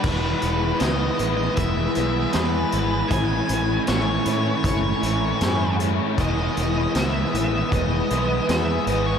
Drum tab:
CC |x-------|--------|--------|
HH |-xxxxxxx|xxxxxxxx|xxxxxxxx|
SD |--o---o-|--o---o-|--o---o-|
BD |o---o---|o---o---|o---o---|